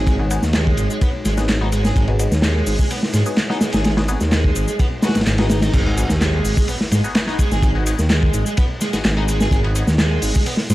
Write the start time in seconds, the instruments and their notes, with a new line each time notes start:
Already playing: detuned saw bass G#1, ambient pad G#3 D#4 F#4 C#5
0.07 overdriven electric guitar G#3, kick, ride, shaker
0.19 synth stab B3 D#4 F#4 G#4
0.31 synth stab B3 D#4 F#4 G#4, ride, shaker
0.42 detuned saw bass D#2, snare, shaker
0.53 overdriven electric guitar G#3, snare, clap, ride, shaker
0.67 kick
0.77 detuned saw bass G#1, ride, shaker
0.90 overdriven electric guitar G#3, shaker
1.01 overdriven electric guitar B3, kick, ride, shaker
1.25 detuned saw bass G#1, overdriven electric guitar G#3, snare, ride, shaker
1.37 synth stab B3 D#4 F#4 G#4, snare, shaker
1.48 snare, clap, ride, shaker
1.61 synth stab B3 D#4 F#4 G#4, overdriven electric guitar D#4
1.72 overdriven electric guitar G#3, ride, shaker
1.85 overdriven electric guitar G#4, snare, shaker
1.96 detuned saw bass G#1, overdriven electric guitar G#3, kick, ride, shaker
2.08 synth stab B3 D#4 F#4 G#4, ride
2.19 synth stab B3 D#4 F#4 G#4, ride, shaker
2.31 detuned saw bass D#2, snare, shaker
2.42 overdriven electric guitar G#3, snare, clap, ride, shaker
2.66 detuned saw bass G#1, open hi-hat, shaker
2.79 overdriven electric guitar G#3, kick, shaker
2.90 overdriven electric guitar B3, ride, shaker
3.03 snare
3.13 detuned saw bass G#2, overdriven electric guitar G#3, snare, ride, shaker
3.26 synth stab B3 D#4 F#4 G#4, shaker
3.37 snare, clap, ride, shaker
3.50 synth stab B3 D#4 F#4 G#4, overdriven electric guitar D#4, snare
3.61 overdriven electric guitar G#3, snare, ride, shaker
3.73 detuned saw bass G#1, overdriven electric guitar G#4, snare, ride, shaker
3.84 overdriven electric guitar G#3, snare, ride, shaker
3.97 synth stab B3 D#4 F#4 G#4, snare, ride
4.08 synth stab B3 D#4 F#4 G#4, ride, shaker
4.20 detuned saw bass D#2, snare, shaker
4.32 overdriven electric guitar G#3, snare, clap, ride, shaker
4.44 kick
4.56 detuned saw bass G#1, ride, shaker
4.68 overdriven electric guitar G#3, shaker
4.79 overdriven electric guitar B3, kick, ride, swell, shaker
5.02 synth stab B3 D#4 F#4 G#4, overdriven electric guitar F#4, snare, ride, shaker
5.09 snare, ride
5.15 detuned saw bass G#1, snare, ride, shaker
5.21 snare, ride
5.26 detuned saw bass G#1, snare, clap, ride, shaker
5.38 synth stab B3 D#4 F#4 G#4, overdriven electric guitar D#4, snare, ride
5.50 overdriven electric guitar D#4, snare, ride, shaker
5.62 overdriven electric guitar D#4, snare, ride, shaker
5.73 detuned saw bass G#1, overdriven electric guitar G#3, kick, crash, ride, impact, shaker
5.86 synth stab B3 D#4 F#4 G#4, ride
5.97 synth stab B3 D#4 F#4 G#4, ride, shaker
6.09 detuned saw bass D#2, snare, shaker
6.21 overdriven electric guitar G#3, snare, clap, ride, shaker
6.45 detuned saw bass G#1, open hi-hat, shaker
6.57 overdriven electric guitar G#3, kick, shaker
6.68 overdriven electric guitar B3, ride, shaker
6.81 snare
6.91 detuned saw bass G#2, overdriven electric guitar G#3, snare, ride, shaker
7.04 synth stab B3 D#4 F#4 G#4, shaker
7.15 snare, clap, ride, shaker
7.27 synth stab B3 D#4 F#4 G#4, overdriven electric guitar D#4, snare
7.39 overdriven electric guitar G#3, kick, ride, shaker
7.51 detuned saw bass G#1, overdriven electric guitar G#4, snare, shaker
7.62 overdriven electric guitar G#3, kick, ride, shaker
7.75 synth stab B3 D#4 F#4 G#4
7.86 synth stab B3 D#4 F#4 G#4, ride, shaker
7.99 detuned saw bass D#2, snare, shaker
8.10 overdriven electric guitar G#3, snare, clap, ride, shaker
8.23 kick
8.33 detuned saw bass G#1, ride, shaker
8.46 overdriven electric guitar G#3, shaker
8.57 overdriven electric guitar B3, kick, ride, shaker
8.81 overdriven electric guitar G#3, snare, ride, shaker
8.93 detuned saw bass G#1, synth stab B3 D#4 F#4 G#4, snare, shaker
9.04 detuned saw bass G#1, snare, clap, ride, shaker
9.17 synth stab B3 D#4 F#4 G#4, overdriven electric guitar D#4
9.28 overdriven electric guitar G#3, ride, shaker
9.41 overdriven electric guitar G#4, snare, shaker
9.51 detuned saw bass G#1, overdriven electric guitar G#3, kick, ride, shaker
9.64 synth stab B3 D#4 F#4 G#4, ride
9.75 synth stab B3 D#4 F#4 G#4, ride, shaker
9.87 detuned saw bass D#2, snare, shaker
9.98 overdriven electric guitar G#3, snare, clap, ride, shaker
10.22 detuned saw bass G#1, open hi-hat, shaker
10.35 overdriven electric guitar G#3, kick, shaker
10.46 overdriven electric guitar B3, ride, shaker
10.57 snare
10.70 detuned saw bass G#2, overdriven electric guitar G#3, snare, ride, shaker